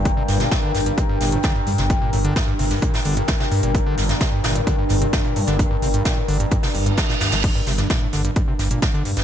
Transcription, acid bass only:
X:1
M:4/4
L:1/16
Q:1/4=130
K:Gm
V:1 name="Acid bass" clef=bass
G,, C, G,, B,, z D, G,, G,, C, G,, B,, A,, D, G,, G,, C, | G,, B,, A,, D, G,, G,, C, G,, B,, A,, D, G,, G,, C, G,, B,, | A,, D, G,, G,, C, G,, B,, A,, D, G,, G,, C, G,, B,, A,, D, | G,, G,, C, G,, B,, A,, D, G,, G,, C, G,, G,, G,,, B,, G,, G, |
G,, G,, C, G,, B,, A,, D, G,, G,, C, G,, B,, z D, G,, G,, |]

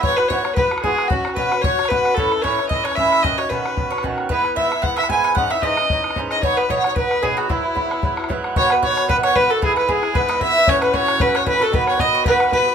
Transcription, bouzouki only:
X:1
M:4/4
L:1/8
Q:"Swing" 1/4=226
K:E
V:1 name="Bouzouki"
[G,,E,B,F] [E,B,F] [G,,E,B,F] B, [G,,E,B,F] [E,B,F] [G,,E,B,F]2 | [B,,F,CF] [F,CF] [B,,F,CF] [F,CF] [B,,F,CF] [F,CF] [B,,F,CF]2 | [A,,E,CE] [E,CE] [A,,E,CE] [E,CE] [A,,E,CE] [E,CE] [A,,E,CE]2 | [B,,D,CF] [D,CF] [B,,D,CF] [D,CF] [B,,D,CF] [D,CF] [B,,D,CF]2 |
[G,,E,B,E] [E,B,E] [G,,E,B,E] [E,B,E] [G,,E,B,E] [E,B,E] [G,,E,B,E]2 | [G,,E,CD] [E,CD] [G,,E,CD] [E,CD] [G,,E,CD] [E,CD] [G,,E,CD]2 | [B,,F,B,D] [F,B,D] [B,,F,B,D] [F,B,D] [B,,F,B,D] [F,B,D] [B,,F,B,D]2 | [G,,F,B,E] [F,B,E] [G,,F,B,E] [F,B,E] [G,,F,B,E] [F,B,E] [G,,F,B,E]2 |
[B,,D,B,F]2 [B,,D,B,F]2 [B,,D,B,F]2 [B,,D,B,F] [D,B,F] | [G,,E,B,E]2 [G,,E,B,E] [E,B,E] [G,,E,B,E]2 [G,,E,B,E] [E,B,E] | [A,,E,CF]2 [A,,E,CF]2 [A,,E,CF]2 [A,,E,CF] [E,CF] | [B,,D,B,F]2 [B,,D,B,F]2 [B,,D,B,F]2 [B,,D,B,F] [D,B,F] |]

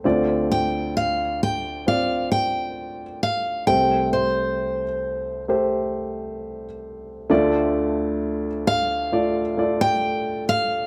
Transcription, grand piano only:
X:1
M:4/4
L:1/8
Q:1/4=66
K:Dm
V:1 name="Grand piano"
[CFd]3 z [CFd]3 z | [A,Gc]3 z [A,Gc]3 z | [A,Fd]3 z [A,Fd] [A,Fd]2 z |]
V:2 name="Grand piano" clef=bass
[D,,D,]8 | [C,,C,]8 | [D,,D,]8 |]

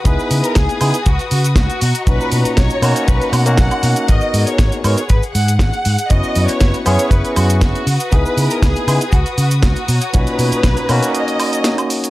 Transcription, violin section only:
X:1
M:4/4
L:1/16
Q:1/4=119
K:B
V:1 name="Violin section"
B3 A G4 F2 F2 F4 | B4 c4 B2 f2 f4 | d3 c3 c2 B2 f2 f4 | d3 c3 c2 B2 F2 F4 |
B3 A G4 F2 F2 F4 | B8 d6 z2 |]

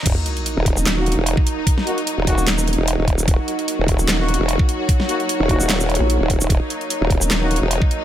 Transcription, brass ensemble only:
X:1
M:4/4
L:1/16
Q:"Swing 16ths" 1/4=149
K:Ebm
V:1 name="Brass ensemble"
z8 z [B,EG]2 z4 z | z2 [B,EG] z3 [B,EG]2 z8 | z8 z [B,EG]2 z4 z | z2 [B,EG] z3 [B,EG]2 z8 |
z8 z [B,EG]2 z4 z |]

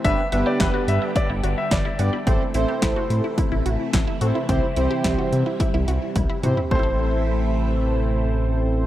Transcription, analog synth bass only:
X:1
M:4/4
L:1/16
Q:1/4=108
K:Ador
V:1 name="Analog synth bass" clef=bass
G,,, z G,,, z G,,, z G,, z2 G,,, G,,, z G,,, z G,, z | A,,, z A,,, z A,,, z A,, z2 A,,, A,,, z A,,, z A,, z | C,, z C,, z C,, z C, z2 C,, C,, z C,, z C, z | A,,,16 |]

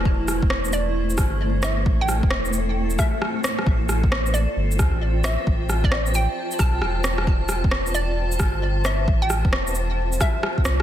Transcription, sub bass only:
X:1
M:4/4
L:1/16
Q:"Swing 16ths" 1/4=133
K:Flyd
V:1 name="Sub bass" clef=bass
E,,,3 E,,,6- E,,, G,,,6 | A,,,3 E,,,6- E,,, z6 | A,,,6- A,,, z G,,,2 D,, A,,,4 z | A,,,6- A,,, z3 B,,,2 E,,,4- |
E,,,3 E,,,6- E,,, G,,,6 | A,,,3 E,,,6- E,,, z4 C,,2 |]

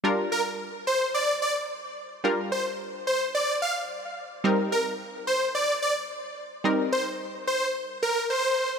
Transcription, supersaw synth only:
X:1
M:4/4
L:1/16
Q:1/4=109
K:Gm
V:1 name="Supersaw synth"
z2 B z3 c2 d2 d z4 z | z2 c z3 c2 d2 f z4 z | z2 B z3 c2 d2 d z4 z | z2 c z3 c2 z2 B2 c3 z |]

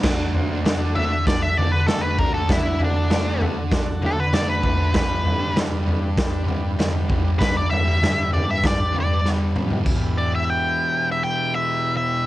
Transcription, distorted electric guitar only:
X:1
M:4/4
L:1/16
Q:1/4=98
K:Dmix
V:1 name="Distorted electric guitar" clef=bass
[D,A,D]3 [A,D] [D,A,D] [A,D] [D,A,D]3 z [D,A,D]2 [D,A,D]2 [D,A,D] [A,D] | [D,A,D]3 [A,D] [D,A,D] [A,D] [D,A,D]3 z [D,A,D]2 [D,A,D]2 [D,A,D] [A,D] | [G,,D,G,]3 [D,G,] [G,,D,G,] [D,G,] [G,,D,G,]3 z [G,,D,G,]2 [G,,D,G,]2 [G,,D,G,] [D,G,] | [G,,D,G,]3 [D,G,] [G,,D,G,] [D,G,] [G,,D,G,]3 z [G,,D,G,]2 [G,,D,G,]2 [G,,D,G,] [D,G,] |
[E,,B,,E,]16 |]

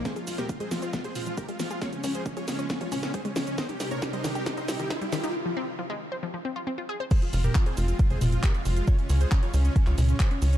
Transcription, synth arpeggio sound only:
X:1
M:4/4
L:1/16
Q:1/4=136
K:Fm
V:1 name="Synth arpeggio sound" clef=bass
F, A z C z A, F, c F, A z F, A A, F, A | z F, D z F, A, z d F, F, D z A, A, F, z | E, E z B, z G, E, G E, E z E, E G, E, E | z F, C z F, A, z c F, F, C F C F A c |
z16 | z16 |]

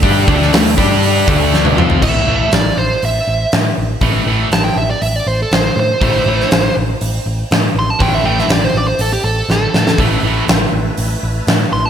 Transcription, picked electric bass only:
X:1
M:4/4
L:1/8
Q:1/4=120
K:Am
V:1 name="Picked electric bass" clef=bass
G,, D,, D,, G,,2 D,,2 F,, | A,,, A,,, A,,, A,,, A,,, A,,, A,, A,,, | A,,, A,,, A,,, A,,, A,,, A,,, A,,, A,, | A,,, A,,, A,,, A,,, A,,, A,,, A,, A,,, |
A,,, A,,, A,,, A,,, A,,, A,,, A,,, A,, | A,,, A,,, A,,, A,,, A,,, A,,, A,, A,,, |]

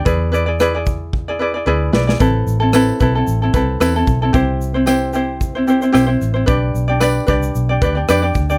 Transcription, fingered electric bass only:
X:1
M:4/4
L:1/8
Q:"Swing 16ths" 1/4=112
K:Am
V:1 name="Fingered electric bass" clef=bass
E,,6 D,, B,,, | A,,, A,,,2 B,,, A,,, C,, E,, B,,, | C,,6 B,,, A,,, | B,,, B,,,2 C,, B,,, D,, F,, D,, |]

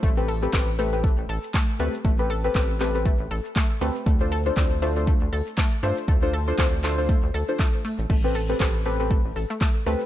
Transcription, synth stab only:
X:1
M:4/4
L:1/16
Q:"Swing 16ths" 1/4=119
K:Am
V:1 name="Synth stab"
z [CGAB] z [CGAB] [CGAB] z [CGAB] [CGAB]2 z4 z [CGAB] z | z [CGAB] z [CGAB] [CGAB] z [CGAB] [CGAB]2 z4 z [CGAB] z | z [DFAc] z [DFAc] [DFAc] z [DFAc] [DFAc]2 z4 z [DFAc] z | z [DFAc] z [DFAc] [DFAc] z [DFAc] [DFAc]2 z2 [DFAc] z4 |
z [CGAB] z [CGAB] [CGAB] z [CGAB] [CGAB]2 z4 z [CGAB] z |]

